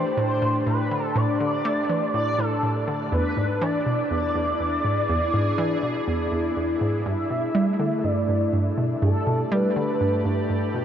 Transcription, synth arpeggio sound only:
0.17 0.41 A2 medium
0.42 0.59 A2 medium
0.67 0.83 A2 medium
0.91 1.08 D3 medium
1.16 1.26 A2 medium
1.40 1.57 D3 medium
1.65 1.82 A3 loud
1.89 2.00 E3 medium
2.14 2.37 A2 medium
2.39 2.55 A2 medium
2.63 2.80 A2 medium
2.88 3.04 D3 medium
3.12 3.22 E2 medium
3.37 3.54 G#2 medium
3.61 3.78 E3 loud
3.86 3.96 B2 medium
4.11 4.34 E2 medium
4.35 4.52 E2 medium
4.60 4.77 E2 medium
4.85 5.01 G#2 medium
5.09 5.19 E2 loud
5.34 5.51 G#2 medium
5.58 5.75 E3 loud
5.83 5.93 B2 medium
6.08 6.31 E2 medium
6.32 6.49 E2 medium
6.57 6.73 E2 medium
6.81 6.98 G#2 medium
7.06 7.16 G2 loud
7.30 7.47 B2 medium
7.55 7.72 G3 loud
7.80 7.90 D3 medium
8.04 8.27 G2 medium
8.29 8.46 G2 medium
8.53 8.70 G2 medium
8.78 8.95 B2 medium
9.02 9.12 G2 loud
9.27 9.44 B2 medium
9.52 9.68 G3 loud
9.76 9.86 D3 medium
10.01 10.24 G2 medium
10.25 10.42 G2 medium
10.50 10.67 G2 medium
10.74 10.85 B2 medium

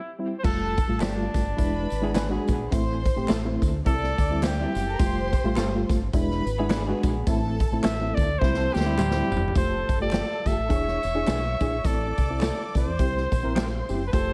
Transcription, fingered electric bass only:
0.44 0.80 F1 medium
0.89 0.98 A1 medium
1.00 1.27 G1 medium
1.35 1.53 G1 medium
1.59 1.85 E1 loud
1.91 2.37 G#1 medium
2.48 2.67 A#1 medium
2.72 3.08 A1 loud
3.17 3.27 A1 medium
3.30 3.56 A1 medium
3.62 3.81 D2 medium
3.86 4.12 C2 loud
4.19 4.64 D2 medium
4.76 4.95 F#1 medium
5.00 5.35 F1 medium
5.44 5.53 A1 medium
5.56 5.83 G1 loud
5.90 6.09 G1 medium
6.13 6.40 E1 loud
6.46 6.92 G#1 loud
7.04 7.23 A#1 medium
7.27 7.63 A1 loud
7.72 7.81 A1 medium
7.84 8.11 A1 loud
8.18 8.37 D2 medium
8.41 8.68 C2 loud
8.76 9.21 D2 loud
9.31 9.50 F#1 medium
9.56 9.82 F1 medium
9.89 10.21 G1 medium
10.46 10.55 G1 medium
10.58 10.68 A1 medium
10.70 10.96 E1 medium
11.04 11.23 E1 medium
11.28 11.54 B1 loud
11.61 11.80 A#1 medium
11.85 12.11 A1 loud
12.18 12.50 C2 medium
12.75 12.84 C2 medium
12.87 12.97 E2 medium
12.99 13.25 C2 loud
13.32 13.41 A#1 loud
13.45 13.81 A#1 medium
13.90 14.08 F#1 medium
14.14 14.33 F1 medium

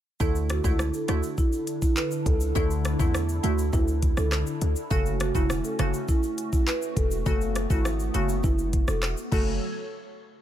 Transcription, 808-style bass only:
0.20 0.61 D2 loud
0.64 0.91 C#2 medium
1.09 1.22 D2 medium
2.26 2.53 C#2 medium
2.56 2.96 D2 loud
3.00 3.40 E2 medium
3.44 3.70 D2 medium
3.73 4.13 D2 loud
4.17 4.44 C#2 medium
4.62 4.75 D2 medium
4.91 5.31 F#1 loud
5.35 5.62 E1 medium
5.79 5.92 F#1 medium
6.97 7.23 E1 loud
7.26 7.66 F#1 loud
7.70 8.10 G#1 medium
8.14 8.41 F#1 medium
8.44 8.84 F#1 loud
8.88 9.15 E1 medium
9.32 9.59 F#1 loud

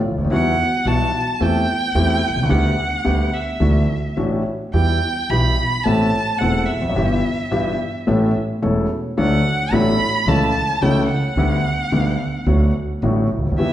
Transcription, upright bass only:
0.10 0.17 C#2 soft
0.17 0.24 D2 soft
0.24 0.29 D#2 medium
0.30 0.53 E2 medium
0.85 1.08 B1 medium
1.41 1.64 E2 medium
1.95 2.18 E2 loud
2.30 2.36 B1 soft
2.36 2.43 C2 medium
2.44 2.50 C#2 medium
2.51 2.74 D2 medium
3.06 3.29 D2 medium
3.60 3.84 D2 medium
4.17 4.41 A1 medium
4.73 4.97 E2 medium
5.30 5.53 B1 medium
5.86 6.09 A1 medium
6.41 6.65 E1 medium
6.76 6.83 E1 soft
6.83 6.89 F1 medium
6.90 6.96 F#1 medium
6.96 7.20 G1 medium
7.52 7.76 G1 medium
8.08 8.31 A1 medium
8.63 8.86 E1 medium
9.18 9.41 D2 medium
9.71 9.95 A1 loud
10.26 10.49 C#2 medium
10.81 11.04 C#2 medium
11.36 11.59 D2 medium
11.91 12.15 D2 medium
12.46 12.70 D2 medium
13.02 13.26 A1 medium
13.37 13.44 C#2 soft
13.44 13.50 D2 medium
13.51 13.58 D#2 medium
13.59 13.73 E2 medium

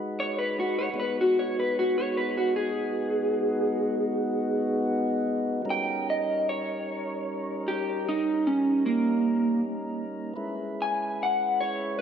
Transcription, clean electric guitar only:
0.20 0.37 C#5 loud
0.39 0.56 B4 medium
0.60 0.77 F#4 medium
0.79 0.96 C#5 loud
1.00 1.16 B4 medium
1.21 1.37 F#4 medium
1.39 1.56 C#5 medium
1.60 1.76 B4 medium
1.79 1.95 F#4 medium
1.98 2.15 C#5 medium
2.17 2.34 B4 medium
2.37 2.54 F#4 medium
2.56 4.86 G#4 loud
5.70 6.07 G5 medium
6.10 6.46 D#5 medium
6.49 7.62 C#5 medium
7.68 8.04 G4 medium
8.09 8.44 D#4 medium
8.47 8.83 C#4 medium
8.86 9.60 A#3 loud
10.82 11.18 G#5 medium
11.23 11.58 F#5 medium
11.61 11.97 C#5 loud

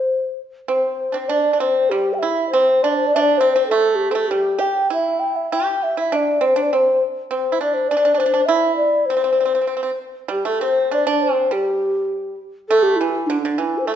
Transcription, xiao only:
0.00 0.40 C5 medium
0.69 1.30 C5 medium
1.28 1.61 D5 medium
1.60 1.91 C5 medium
1.90 2.15 G4 medium
2.14 2.21 G5 medium
2.19 2.50 E5 medium
2.50 2.84 C5 medium
2.83 2.90 D5 medium
2.91 3.08 C5 medium
2.91 2.96 D5 medium
3.07 3.16 D5 loud
3.15 3.22 E5 medium
3.20 3.39 D5 loud
3.38 3.52 C5 medium
3.52 3.67 C5 medium
3.67 3.97 A4 medium
3.95 4.13 G4 medium
4.11 4.28 A4 medium
4.27 4.61 G4 medium
4.60 4.89 G5 medium
4.93 5.21 E5 medium
5.20 5.38 G5 medium
5.36 5.54 E5 medium
5.52 5.85 G5 medium
5.83 5.97 E5 medium
5.99 6.17 E5 medium
6.16 6.48 D5 medium
6.46 6.64 C5 medium
6.62 6.77 D5 medium
6.75 7.02 C5 medium
7.34 7.59 C5 medium
7.62 7.75 D5 medium
7.74 7.90 C5 medium
7.88 8.19 D5 medium
8.18 8.47 C5 medium
8.46 8.76 E5 loud
8.76 9.07 D5 medium
9.06 9.98 C5 medium
10.31 10.44 G4 medium
10.47 10.64 A4 medium
10.62 10.96 C5 medium
10.94 11.07 D5 medium
11.08 11.24 D5 medium
11.22 11.54 C5 medium
11.52 12.39 G4 medium
12.69 12.84 A4 loud
12.83 12.98 G4 loud
12.96 13.28 E4 medium
13.27 13.41 D4 medium
13.42 13.60 D4 medium
13.59 13.80 E4 medium
13.78 13.87 C5 medium
13.86 13.96 A4 loud

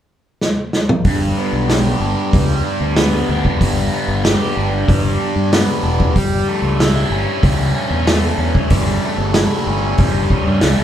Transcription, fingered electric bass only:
1.05 1.31 G1 medium
1.53 1.93 B1 medium
2.00 2.14 G1 medium
2.34 2.60 C#2 medium
2.81 3.20 D2 medium
3.29 3.42 D2 loud
3.61 3.87 G1 loud
4.08 4.35 G1 loud
4.57 4.83 G1 medium
4.88 5.15 G1 medium
5.36 5.62 G2 medium
5.83 6.10 E1 medium
6.16 6.42 G1 medium
6.62 7.02 C#2 medium
7.10 7.24 G1 medium
7.43 7.70 C#2 medium
7.91 8.31 E2 medium
8.38 8.52 E2 medium
8.71 8.97 G1 loud
9.18 9.45 G1 medium
9.67 9.93 G1 medium
9.99 10.25 G1 medium
10.47 10.60 G2 medium
10.63 10.77 C#2 medium
10.79 10.84 B1 medium

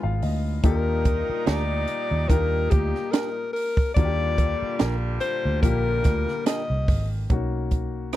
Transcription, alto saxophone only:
0.65 1.43 A#4 medium
1.47 2.30 D5 medium
2.29 2.72 A#4 loud
2.70 3.13 G4 medium
3.11 3.52 A#4 medium
3.53 3.92 A#4 loud
3.94 4.91 D5 loud
5.21 5.60 C5 loud
5.62 6.42 A#4 loud
6.47 7.07 D#5 medium

